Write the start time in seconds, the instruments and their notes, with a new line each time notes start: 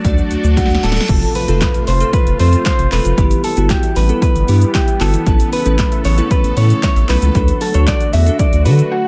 Already playing: analog synth pad F#4 D5 A5
0.05 sub bass D2, synth pluck F#3, synth keys A3 D4 F#4 D5, kick, closed hi-hat, reverse cymbal, shaker
0.18 synth pluck F#3, shaker
0.31 sub bass D2, closed hi-hat, shaker
0.44 sub bass D2, synth pluck D4, shaker
0.57 synth keys A3 D4 F#4 D5, clean electric guitar F#4, kick, snare, closed hi-hat, shaker
0.66 snare
0.70 sub bass D2, shaker
0.75 snare
0.83 sub bass D1, synth pluck F#3, clean electric guitar A4, snare, closed hi-hat, shaker
0.92 snare
0.96 synth pluck A4, shaker
1.01 snare
1.09 sub bass F1, analog synth pad C3 A3 F4, synth pluck F3, synth keys C4 F4 A4, kick, closed hi-hat, crash, impact, shaker
1.22 synth pluck F3, closed hi-hat, shaker
1.35 synth pluck F3, clean electric guitar B4, open hi-hat, shaker
1.48 sub bass F1, synth keys C4 F4 A4, synth pluck A4, closed hi-hat, shaker
1.61 synth pluck F5, kick, snare, clap, closed hi-hat, shaker
1.74 synth pluck F5, closed hi-hat, shaker
1.87 sub bass F1, clean electric guitar C5, open hi-hat, shaker
2.00 synth keys C4 F4 A4, synth pluck C4, closed hi-hat, shaker
2.13 synth pluck F3, clean electric guitar B4, kick, closed hi-hat, shaker
2.27 sub bass F1, closed hi-hat, shaker
2.39 sub bass F2, synth pluck F3, synth keys C4 F4 A4, clean electric guitar C5, open hi-hat, shaker
2.53 closed hi-hat, shaker
2.66 clean electric guitar C5, synth pluck F5, kick, snare, clap, closed hi-hat, shaker
2.79 sub bass F1, synth pluck F5, closed hi-hat, shaker
2.92 sub bass E1, synth keys C4 F4 A4, clean electric guitar B4, clap, open hi-hat, shaker
3.05 sub bass F1, synth pluck F3, closed hi-hat, shaker
3.18 sub bass G1, analog synth pad E3 G3 B3, synth pluck E3, synth keys B3 E4 G4, kick, closed hi-hat, shaker
3.31 synth pluck E3, closed hi-hat, shaker
3.44 synth pluck E3, clean electric guitar A4, open hi-hat, shaker
3.57 sub bass G1, synth keys B3 E4 F#4, synth pluck G4, closed hi-hat, shaker
3.70 clean electric guitar G4, synth pluck E5, kick, snare, clap, closed hi-hat, shaker
3.83 synth pluck E5, closed hi-hat, shaker
3.96 sub bass A1, clean electric guitar B4, open hi-hat, shaker
4.09 synth keys B3 E4 A4, synth pluck B3, closed hi-hat, shaker
4.22 synth pluck E3, clean electric guitar B4, kick, closed hi-hat, shaker
4.35 sub bass G1, closed hi-hat, shaker
4.48 sub bass G2, synth pluck E3, synth keys B3 E4 G4, open hi-hat, shaker
4.62 closed hi-hat, shaker
4.75 clean electric guitar G4, synth pluck E5, kick, snare, clap, closed hi-hat, shaker
4.87 synth pluck E5, closed hi-hat, shaker
5.00 sub bass G1, synth keys B3 E4 F#4, clean electric guitar A4, clap, open hi-hat, shaker
5.14 synth pluck E3, closed hi-hat, shaker
5.26 sub bass A1, analog synth pad C#3 A4, synth keys A3 B3 C#4 E4 B4, kick, closed hi-hat, shaker
5.40 synth pluck E3, closed hi-hat, shaker
5.53 synth pluck E3, clean electric guitar B4, open hi-hat, shaker
5.66 sub bass A1, synth keys A3 B3 C#4 E4 B4, synth pluck A4, closed hi-hat, shaker
5.79 synth pluck E5, kick, snare, clap, closed hi-hat, shaker
5.92 synth pluck E5, closed hi-hat, shaker
6.05 sub bass A1, clean electric guitar C#5, open hi-hat, shaker
6.18 synth keys A3 B3 C#4 E4 B4, synth pluck C#4, closed hi-hat, shaker
6.31 synth pluck E3, clean electric guitar B4, kick, closed hi-hat, shaker
6.44 sub bass A1, closed hi-hat, shaker
6.57 sub bass A2, synth pluck E3, synth keys A3 B3 C#4 E4 B4, clean electric guitar C#5, open hi-hat, shaker
6.70 closed hi-hat, shaker
6.83 clean electric guitar C#5, synth pluck E5, kick, snare, clap, closed hi-hat, shaker
6.96 sub bass A1, synth pluck E5, closed hi-hat, shaker
7.09 sub bass B1, synth keys A3 B3 C#4 E4 B4, clean electric guitar B4, clap, open hi-hat, shaker
7.22 sub bass C#2, synth pluck E3, closed hi-hat, shaker
7.35 sub bass D2, analog synth pad D3 A3 F#4, synth pluck F#3, synth keys D4 F#4 A4, kick, closed hi-hat, shaker
7.48 synth pluck F#3, closed hi-hat, shaker
7.61 synth pluck F#3, clean electric guitar A4, open hi-hat, shaker
7.74 sub bass D2, synth keys D4 F#4 A4, synth pluck A4, clean electric guitar C#5, closed hi-hat, shaker
7.87 clean electric guitar D5, synth pluck F#5, kick, snare, clap, closed hi-hat, shaker
8.00 synth pluck F#5, closed hi-hat, shaker
8.13 sub bass E2, clean electric guitar E5, open hi-hat, shaker
8.26 synth keys D4 F#4 A4, synth pluck D4, closed hi-hat, shaker
8.39 synth pluck F#3, clean electric guitar D5, kick, closed hi-hat, shaker
8.53 sub bass D2, closed hi-hat, shaker
8.65 sub bass D3, synth pluck F#3, synth keys D4 F#4 A4, clean electric guitar B4, open hi-hat, shaker
8.79 closed hi-hat, shaker
8.92 clean electric guitar F#4, synth pluck F#5
9.05 synth pluck F#5